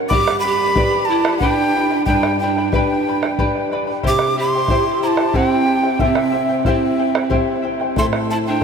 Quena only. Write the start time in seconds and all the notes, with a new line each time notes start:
0.09 D6
0.40 B5
1.05 A5
1.38 G5
2.06 G5
2.39 G5
2.73 G5
4.08 D6
4.41 C6
5.03 A#5
5.08 A5
5.36 F#5
5.48 G5
6.01 E5
6.66 F5
6.70 E5
7.98 C6
8.31 A5
8.47 G5